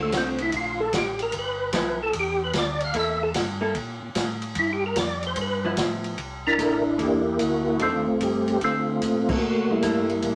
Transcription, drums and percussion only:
0.12 kick, snare, hi-hat pedal, ride
0.38 ride
0.52 kick, ride
0.93 kick, snare, hi-hat pedal, ride
1.19 ride
1.32 kick, ride
1.73 kick, snare, hi-hat pedal, ride
2.13 kick, ride
2.53 kick, snare, hi-hat pedal, ride
2.80 ride
2.94 kick, ride
3.34 kick, snare, hi-hat pedal, ride
3.75 kick, ride
4.15 kick, snare, hi-hat pedal, ride
4.42 ride
4.55 kick, ride
4.96 kick, snare, hi-hat pedal, ride
5.23 ride
5.36 kick, ride
5.77 kick, snare, hi-hat pedal, ride
6.04 ride
6.18 kick, ride
6.59 kick, hi-hat pedal, ride
6.99 kick, ride
7.39 kick, hi-hat pedal, ride
7.79 kick, ride
8.21 kick, hi-hat pedal, ride
8.48 ride
8.61 kick, ride
9.02 kick, hi-hat pedal, ride
9.29 kick, crash
9.82 kick, hi-hat pedal, ride
10.09 ride
10.22 kick, ride

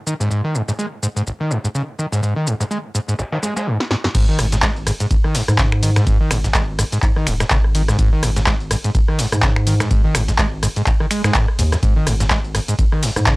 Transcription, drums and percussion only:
0.07 closed hi-hat, shaker
0.20 snare, shaker
0.31 closed hi-hat, shaker
0.55 closed hi-hat, shaker
0.68 snare, shaker
0.79 closed hi-hat, shaker
0.92 closed hi-hat
1.03 closed hi-hat, shaker
1.17 shaker
1.27 closed hi-hat, shaker
1.51 snare, open hi-hat, shaker
1.65 shaker
1.75 closed hi-hat, shaker
1.99 closed hi-hat, shaker
2.12 snare, shaker
2.23 closed hi-hat, shaker
2.47 closed hi-hat, shaker
2.60 snare, shaker
2.71 closed hi-hat, shaker
2.95 closed hi-hat, shaker
3.09 shaker
3.19 snare, closed hi-hat, shaker
3.32 snare, closed hi-hat
3.43 snare, closed hi-hat, shaker
3.56 snare, closed hi-hat, shaker
3.80 snare
3.91 snare
4.04 snare
4.15 kick, closed hi-hat, ride, crash, shaker
4.39 cross-stick, closed hi-hat, open hi-hat, ride, shaker
4.52 snare, closed hi-hat, shaker
4.62 kick, cross-stick, snare, clap, closed hi-hat, ride, shaker
4.76 closed hi-hat
4.87 cross-stick, closed hi-hat, open hi-hat, ride, shaker
5.00 closed hi-hat, shaker
5.11 kick, closed hi-hat, ride, shaker
5.24 cross-stick
5.35 snare, open hi-hat, ride, shaker
5.48 cross-stick, closed hi-hat, shaker
5.58 kick, snare, clap, closed hi-hat, ride, shaker
5.72 finger snap, cross-stick
5.83 closed hi-hat, open hi-hat, ride, shaker
5.96 finger snap, cross-stick, snare, closed hi-hat, shaker
6.07 kick, closed hi-hat, ride, shaker
6.31 finger snap, cross-stick, closed hi-hat, open hi-hat, ride, shaker
6.44 kick, snare, closed hi-hat, shaker
6.54 kick, cross-stick, snare, clap, closed hi-hat, ride, shaker
6.79 cross-stick, closed hi-hat, open hi-hat, ride, shaker
6.92 closed hi-hat, shaker
7.02 kick, clap, closed hi-hat, ride, shaker
7.16 cross-stick
7.27 finger snap, closed hi-hat, open hi-hat, ride, shaker
7.40 finger snap, cross-stick, snare, closed hi-hat, shaker
7.50 kick, snare, clap, closed hi-hat, ride, shaker
7.64 cross-stick
7.75 closed hi-hat, open hi-hat, ride, shaker
7.88 cross-stick, snare, closed hi-hat, shaker
7.99 kick, closed hi-hat, ride, shaker
8.23 cross-stick, closed hi-hat, open hi-hat, ride, shaker
8.36 snare, closed hi-hat, shaker
8.46 kick, cross-stick, snare, clap, closed hi-hat, ride, shaker
8.60 closed hi-hat
8.71 cross-stick, closed hi-hat, open hi-hat, ride, shaker
8.84 closed hi-hat, shaker
8.95 kick, closed hi-hat, ride, shaker
9.08 cross-stick
9.19 snare, open hi-hat, ride, shaker
9.32 cross-stick, closed hi-hat, shaker
9.42 kick, snare, clap, closed hi-hat, ride, shaker
9.56 finger snap, cross-stick
9.67 closed hi-hat, open hi-hat, ride, shaker
9.80 finger snap, cross-stick, snare, closed hi-hat, shaker
9.91 kick, closed hi-hat, ride, shaker
10.15 finger snap, cross-stick, closed hi-hat, open hi-hat, ride, shaker
10.28 kick, snare, closed hi-hat, shaker
10.38 kick, cross-stick, snare, clap, closed hi-hat, ride, shaker
10.63 cross-stick, closed hi-hat, open hi-hat, ride, shaker
10.76 closed hi-hat, shaker
10.86 kick, clap, closed hi-hat, ride, shaker
11.00 cross-stick
11.11 finger snap, closed hi-hat, open hi-hat, ride, shaker
11.24 finger snap, cross-stick, snare, closed hi-hat, shaker
11.34 kick, snare, clap, closed hi-hat, ride, shaker
11.48 cross-stick
11.59 closed hi-hat, open hi-hat, ride, shaker
11.72 cross-stick, snare, closed hi-hat, shaker
11.83 kick, closed hi-hat, ride, shaker
12.07 cross-stick, closed hi-hat, open hi-hat, ride, shaker
12.20 snare, closed hi-hat, shaker
12.30 kick, cross-stick, snare, clap, closed hi-hat, ride, shaker
12.44 closed hi-hat
12.55 cross-stick, closed hi-hat, open hi-hat, ride, shaker
12.68 closed hi-hat, shaker
12.79 kick, closed hi-hat, ride, shaker
12.92 cross-stick
13.03 snare, open hi-hat, ride, shaker
13.16 cross-stick, closed hi-hat, shaker
13.26 kick, snare, clap, closed hi-hat, ride, shaker

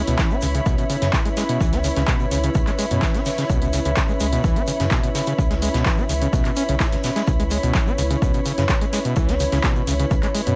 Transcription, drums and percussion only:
0.07 closed hi-hat, shekere
0.18 kick, snare, clap, closed hi-hat, shekere
0.31 shekere
0.41 closed hi-hat, open hi-hat, shekere
0.55 closed hi-hat, shekere
0.66 kick, closed hi-hat, shekere
0.78 closed hi-hat, shekere
0.90 closed hi-hat, open hi-hat, shekere
1.02 snare, closed hi-hat, shekere
1.13 kick, snare, clap, closed hi-hat, shekere
1.25 closed hi-hat, shekere
1.37 snare, closed hi-hat, open hi-hat, shekere
1.49 closed hi-hat, shekere
1.61 kick, closed hi-hat, shekere
1.73 snare, closed hi-hat, shekere
1.84 closed hi-hat, open hi-hat, shekere
1.96 snare, closed hi-hat, shekere
2.07 kick, snare, clap, closed hi-hat, shekere
2.20 shekere
2.31 closed hi-hat, open hi-hat, shekere
2.43 closed hi-hat, shekere
2.55 kick, closed hi-hat, shekere
2.67 clap, closed hi-hat, shekere
2.78 closed hi-hat, open hi-hat, shekere
2.91 closed hi-hat, shekere
3.02 kick, snare, clap, closed hi-hat, shekere
3.14 snare, closed hi-hat, shekere
3.26 snare, open hi-hat, shekere
3.38 snare, closed hi-hat, shekere
3.49 kick, closed hi-hat, shekere
3.62 closed hi-hat, shekere
3.73 closed hi-hat, open hi-hat, shekere
3.85 closed hi-hat, shekere
3.96 kick, snare, clap, closed hi-hat, shekere
4.08 shekere
4.20 closed hi-hat, open hi-hat, shekere
4.32 closed hi-hat, shekere
4.43 kick, closed hi-hat, shekere
4.56 closed hi-hat, shekere
4.67 closed hi-hat, open hi-hat, shekere
4.80 snare, closed hi-hat, shekere
4.90 kick, snare, clap, closed hi-hat, shekere
5.03 closed hi-hat, shekere
5.15 snare, closed hi-hat, open hi-hat, shekere
5.26 closed hi-hat, shekere
5.38 kick, closed hi-hat, shekere
5.50 snare, closed hi-hat, shekere
5.62 closed hi-hat, open hi-hat, shekere
5.74 snare, closed hi-hat, shekere
5.86 kick, snare, clap, closed hi-hat, shekere
5.97 shekere
6.09 closed hi-hat, open hi-hat, shekere
6.22 closed hi-hat, shekere
6.33 kick, closed hi-hat, shekere
6.45 clap, closed hi-hat, shekere
6.56 closed hi-hat, open hi-hat, shekere
6.68 closed hi-hat, shekere
6.80 kick, snare, clap, closed hi-hat, shekere
6.92 snare, closed hi-hat, shekere
7.04 snare, open hi-hat, shekere
7.16 snare, closed hi-hat, shekere
7.27 kick, closed hi-hat, shekere
7.40 closed hi-hat, shekere
7.50 closed hi-hat, open hi-hat, shekere
7.63 closed hi-hat, shekere
7.74 kick, snare, clap, closed hi-hat, shekere
7.87 shekere
7.98 closed hi-hat, open hi-hat, shekere
8.10 closed hi-hat, shekere
8.21 kick, closed hi-hat, shekere
8.34 closed hi-hat, shekere
8.45 closed hi-hat, open hi-hat, shekere
8.58 snare, closed hi-hat, shekere
8.69 kick, snare, clap, closed hi-hat, shekere
8.81 closed hi-hat, shekere
8.93 snare, closed hi-hat, open hi-hat, shekere
9.04 closed hi-hat, shekere
9.16 kick, closed hi-hat, shekere
9.29 snare, closed hi-hat, shekere
9.40 closed hi-hat, open hi-hat, shekere
9.52 snare, closed hi-hat, shekere
9.63 kick, snare, clap, closed hi-hat, shekere
9.76 shekere
9.87 closed hi-hat, open hi-hat, shekere
9.99 closed hi-hat, shekere
10.10 kick, closed hi-hat, shekere
10.23 clap, closed hi-hat, shekere
10.35 closed hi-hat, open hi-hat, shekere
10.46 closed hi-hat, shekere

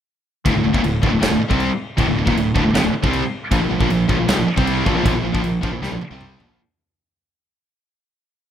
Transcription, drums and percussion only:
0.45 kick, crash
0.74 kick
0.84 crash
1.03 kick
1.22 snare, crash
1.51 kick
1.60 crash
1.98 kick, crash
2.27 kick
2.37 crash
2.56 kick
2.75 snare, crash
3.04 kick
3.13 crash
3.52 kick, crash
3.81 kick
3.90 crash
4.09 kick
4.28 snare, crash
4.58 kick
4.67 crash
4.86 kick
5.06 kick, crash
5.35 kick
5.44 crash
5.63 kick
5.83 snare
6.01 high tom
6.21 mid tom
6.40 floor tom

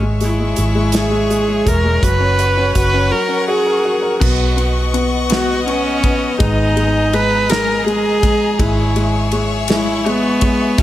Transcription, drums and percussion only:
0.20 closed hi-hat
0.56 closed hi-hat
0.92 snare, closed hi-hat
1.31 closed hi-hat
1.67 kick, closed hi-hat
2.03 kick, closed hi-hat
2.39 closed hi-hat
2.75 kick, closed hi-hat
4.21 kick, crash
4.58 ride
4.94 ride
5.30 snare, ride
5.68 ride
6.03 kick, ride
6.40 kick, ride
6.77 ride
7.13 ride
7.49 snare, ride
7.88 ride
8.23 kick, ride
8.59 kick, ride
8.96 ride
9.32 ride
9.68 snare, ride
10.06 ride
10.41 kick, ride
10.78 kick, ride

